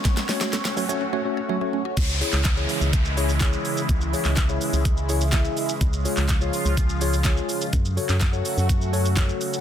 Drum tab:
CC |----------------|x---------------|----------------|----------------|
HH |xxoxxxox--------|x-o-x-o-x-o-x-o-|x-o-x-o-x-o-x-o-|x-o-x-o-x-o-x-o-|
SH |xxxxxxxx--------|xxxxxxxxxxxxxxxx|xxxxxxxxxxxxxxxx|xxxxxxxxxxxxxxxx|
CP |----------------|---xx-------x---|---xx-------x---|---xx-------x---|
SD |oooooo----------|----o-------o---|----o-------o---|----o-------o---|
BD |o---------------|o---o---o---o---|o---o---o---o---|o---o---o---o---|

CC |----------------|
HH |x-o-x-o-x-o-x-o-|
SH |xxxxxxxxxxxxxxxx|
CP |---xx-------x---|
SD |----o-------o---|
BD |o---o---o---o---|